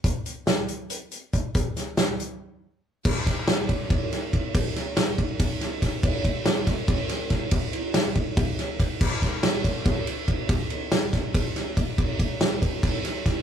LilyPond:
\new DrumStaff \with { instrumentName = "Drums" } \drummode { \time 7/8 \tempo 4 = 141 <hh bd>8 hh8 <hh sn>8 hh8 hh8 hh8 <hh bd>8 | <hh bd>8 <hh sn>8 <hh sn>8 hh8 r4. | <cymc bd>8 <bd cymr sn>8 <cymr sn>8 <bd cymr>8 <bd cymr>8 <cymr sn>8 <bd cymr>8 | <bd cymr>8 <cymr sn>8 <cymr sn>8 <bd cymr>8 <bd cymr>8 <cymr sn>8 <bd cymr sn>8 |
<bd cymr>8 <bd cymr>8 <cymr sn>8 <bd cymr sn>8 <bd cymr>8 <cymr sn>8 <bd cymr sn>8 | <bd cymr>8 cymr8 <cymr sn>8 <bd cymr>8 <bd cymr>8 <cymr sn>8 <bd cymr>8 | <cymc bd>8 <bd cymr sn>8 <cymr sn>8 <bd cymr>8 <bd cymr sn>8 cymr8 <bd cymr>8 | <bd cymr>8 cymr8 <cymr sn>8 <bd cymr sn>8 <bd cymr>8 <cymr sn>8 <bd cymr>8 |
<bd cymr>8 <bd cymr>8 <cymr sn>8 <bd cymr>8 <bd cymr sn>8 <cymr sn>8 <bd cymr sn>8 | }